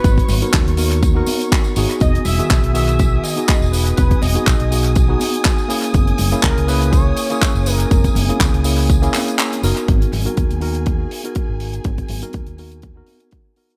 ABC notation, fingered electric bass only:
X:1
M:4/4
L:1/16
Q:"Swing 16ths" 1/4=122
K:G#m
V:1 name="Fingered electric bass" clef=bass
G,,, z G,,, z D,, D,,4 z4 z G,,, z | E,,, z E,,, z B,,, B,,,4 z4 E,,,2 z | E,,, z E,,, z B,,, B,,,4 z6 z | F,,, z F,,, z C,, C,,4 z4 F,,,2 z |
F,,, z F,,, z C,, C,,4 z4 z F,,, z | G,,, z G,,, z D,, D,,4 z4 G,,,2 z | G,,, z G,,, z D,, D,,4 z6 z |]